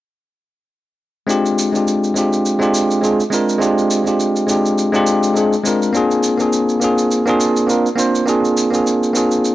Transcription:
1.27 1.69 G#3 medium
1.27 1.70 C4 medium
1.27 1.70 D4 medium
1.27 1.71 F4 medium
1.27 1.71 G4 medium
1.27 shaker soft
1.46 shaker soft
1.59 shaker medium
1.72 2.12 G#3 medium
1.72 2.13 C4 medium
1.72 2.13 D4 medium
1.72 2.14 F4 medium
1.72 shaker soft
1.76 2.14 G4 medium
1.88 shaker soft
2.04 shaker soft
2.14 2.57 G#3 medium
2.14 2.57 C4 medium
2.14 2.58 D4 medium
2.14 2.58 F4 medium
2.14 shaker medium
2.18 2.59 G4 medium
2.33 shaker soft
2.46 shaker soft
2.59 2.99 G#3 medium
2.59 2.99 C4 medium
2.59 3.00 D4 medium
2.59 3.00 F4 medium
2.59 3.01 G4 medium
2.59 shaker soft
2.74 shaker medium
2.91 shaker soft
3.01 3.21 G#3 medium
3.01 3.21 C4 medium
3.01 3.22 D4 medium
3.01 3.22 F4 medium
3.01 3.23 G#4 medium
3.01 shaker soft
3.20 shaker soft
3.30 3.57 G#3 medium
3.30 3.57 C4 medium
3.30 3.58 D4 medium
3.30 3.58 F4 medium
3.30 3.59 A#4 medium
3.30 shaker medium
3.49 shaker soft
3.58 4.01 G#3 medium
3.58 4.02 C4 medium
3.58 4.03 D4 medium
3.58 4.03 F4 medium
3.58 shaker soft
3.62 4.03 G4 medium
3.78 shaker soft
3.91 shaker medium
4.04 4.45 G#3 medium
4.04 4.45 C4 medium
4.04 4.46 D4 medium
4.04 4.46 F4 medium
4.04 4.47 G4 medium
4.04 shaker soft
4.20 shaker soft
4.36 shaker soft
4.47 4.90 G#3 medium
4.47 4.90 C4 medium
4.47 4.90 D4 medium
4.47 4.91 F4 medium
4.47 4.92 G4 medium
4.47 shaker medium
4.66 shaker soft
4.78 shaker soft
4.92 5.32 G#3 medium
4.92 5.33 C4 medium
4.92 5.33 D4 medium
4.92 5.34 F4 medium
4.92 5.34 G4 loud
4.92 shaker soft
5.07 shaker medium
5.23 shaker soft
5.34 5.54 G#3 medium
5.34 5.54 C4 medium
5.34 5.55 D4 medium
5.34 5.55 F4 medium
5.34 5.56 G#4 medium
5.34 shaker soft
5.53 shaker soft
5.64 5.90 G#3 medium
5.64 5.90 C4 medium
5.64 5.91 D4 medium
5.64 5.91 F4 medium
5.64 5.92 A#4 medium
5.64 shaker medium
5.82 shaker soft
5.93 6.35 A#3 medium
5.93 6.36 C4 medium
5.93 6.36 D4 medium
5.93 6.37 F4 medium
5.93 shaker soft
5.97 6.37 G#4 medium
6.11 shaker soft
6.23 shaker medium
6.38 6.78 A#3 medium
6.38 6.78 C4 medium
6.38 6.79 D4 medium
6.38 6.79 F4 medium
6.38 6.80 G#4 medium
6.38 shaker soft
6.53 shaker soft
6.69 shaker soft
6.80 7.23 A#3 medium
6.80 7.23 C4 medium
6.80 7.24 D4 medium
6.80 7.24 F4 medium
6.80 shaker medium
6.84 7.25 G#4 medium
6.98 shaker soft
7.11 shaker soft
7.26 7.65 A#3 medium
7.26 7.66 C4 medium
7.26 7.66 D4 medium
7.26 7.67 F4 medium
7.26 7.67 G#4 medium
7.26 shaker soft
7.41 shaker medium
7.57 shaker soft
7.67 7.87 A#3 medium
7.67 7.87 C4 medium
7.67 7.88 D4 medium
7.67 7.88 F4 medium
7.67 7.89 A#4 medium
7.67 shaker soft
7.86 shaker soft
7.95 8.22 A#3 medium
7.95 8.23 C4 medium
7.95 8.23 D4 medium
7.95 8.24 F4 medium
7.95 8.24 C5 medium
7.95 shaker medium
8.15 shaker soft
8.25 8.68 A#3 medium
8.25 8.69 C4 medium
8.25 8.69 D4 medium
8.25 8.70 F4 medium
8.25 8.70 G#4 medium
8.25 shaker soft
8.45 shaker soft
8.57 shaker medium
8.71 9.11 A#3 medium
8.71 9.11 C4 medium
8.71 9.12 D4 medium
8.71 9.12 F4 medium
8.71 shaker soft
8.75 9.13 G#4 medium
8.87 shaker soft
9.03 shaker soft
9.13 9.55 A#3 medium
9.13 9.55 C4 medium
9.13 9.55 D4 medium
9.13 9.55 F4 medium
9.13 shaker medium
9.17 9.55 G#4 medium
9.32 shaker soft
9.45 shaker soft

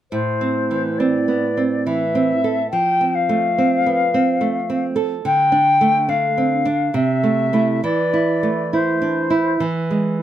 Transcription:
0.11 2.67 A2 soft
0.11 1.00 C5 soft
0.41 0.88 C4 soft
0.71 1.17 E3 soft
0.98 1.46 C4 soft
0.98 1.87 D5 soft
1.28 1.57 B3 soft
1.57 2.03 C4 soft
1.86 2.32 E3 soft
1.86 2.70 E5 soft
2.15 2.60 C4 soft
2.44 2.72 A4 soft
2.70 5.21 F3 soft
2.70 3.16 G5 medium
3.01 3.47 C4 soft
3.15 4.83 F5 soft
3.29 3.75 A3 soft
3.58 4.03 C4 soft
3.86 4.14 B3 soft
4.14 4.59 C4 soft
4.41 4.86 A3 soft
4.70 5.14 C4 soft
4.96 5.24 A4 soft
5.25 6.89 D3 soft
5.25 6.11 G5 medium
5.52 5.97 D4 soft
5.81 6.25 A3 soft
6.09 6.53 D4 soft
6.09 6.96 F5 medium
6.38 6.65 C4 soft
6.65 6.94 D4 soft
6.94 7.80 C3 soft
6.94 7.83 E5 medium
7.23 7.52 A3 soft
7.53 7.80 A3 soft
7.53 7.80 E4 soft
7.84 9.58 E3 soft
7.84 8.75 D5 medium
8.13 8.61 E4 soft
8.43 8.90 A3 soft
8.73 9.20 E4 soft
8.73 9.62 C5 soft
9.02 9.31 D4 soft
9.30 9.60 E4 soft
9.60 10.22 E3 soft
9.91 10.21 G#3 soft

